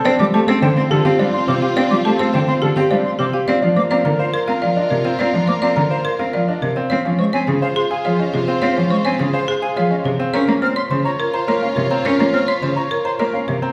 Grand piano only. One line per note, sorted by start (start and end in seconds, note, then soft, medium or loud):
0.05 0.24 D4 medium
0.34 0.52 G4 medium
0.48 0.66 A4 medium
0.62 0.81 C5 medium
0.91 1.09 A4 medium
1.05 1.23 G4 medium
1.19 1.38 D4 medium
1.48 1.66 C4 medium
1.62 1.81 G4 medium
1.76 1.95 D4 medium
2.05 2.24 G4 medium
2.19 2.38 A4 medium
2.34 2.52 C5 medium
2.62 2.81 A4 medium
2.77 2.95 G4 medium
2.91 3.09 D4 medium
3.19 3.38 C4 medium
3.34 3.52 G4 medium
3.48 3.66 F4 medium
3.62 3.81 D4 medium
3.90 4.09 F4 medium
4.05 4.23 A#4 medium
4.19 4.38 C5 medium
4.48 4.66 A#4 medium
4.62 4.81 F4 medium
4.77 4.95 D4 medium
5.05 5.24 C4 medium
5.19 5.38 F4 medium
5.33 5.52 D4 medium
5.62 5.81 F4 medium
5.77 5.95 A#4 medium
5.91 6.09 C5 medium
6.19 6.38 A#4 medium
6.34 6.52 F4 medium
6.48 6.67 D4 medium
6.77 6.95 C4 medium
6.91 7.09 F4 medium
7.05 7.24 C#4 medium
7.48 7.66 G#4 medium
7.62 7.81 C5 medium
7.91 8.09 G#4 medium
8.05 8.24 F4 medium
8.19 8.38 C#4 medium
8.48 8.66 C4 medium
8.62 8.81 F4 medium
8.77 8.95 C#4 medium
9.20 9.38 G#4 medium
9.34 9.52 C5 medium
9.62 9.81 G#4 medium
9.76 9.95 F4 medium
9.91 10.09 C#4 medium
10.19 10.38 C4 medium
10.34 10.52 A#4 medium
10.48 10.67 C#4 medium
10.91 11.09 C5 medium
11.05 11.24 C#5 medium
11.34 11.52 C5 medium
11.48 11.66 A#4 medium
11.62 11.81 C#4 medium
11.91 12.09 C4 medium
12.05 12.24 A#4 medium
12.19 12.38 C#4 medium
12.62 12.81 C5 medium
12.77 12.95 C#5 medium
13.05 13.24 C5 medium
13.19 13.38 A#4 medium
13.34 13.52 C#4 medium
13.62 13.72 C4 medium